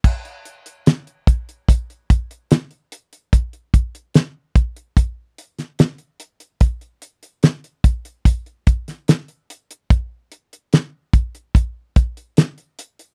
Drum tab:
CC |x---------------|----------------|----------------|----------------|
HH |-xxxxxxxxxxxxxxx|xxxxx-xxx-xxxxxx|xxxxxxxxxxxxxxxx|x-xxx-xxx-xxxxxx|
SD |----o-------o---|----o------oo---|----o------oo---|----o-------o---|
BD |o-----o-o-o-----|o-o---o-o-------|o-----o-o-o-----|o-----o-o-o-----|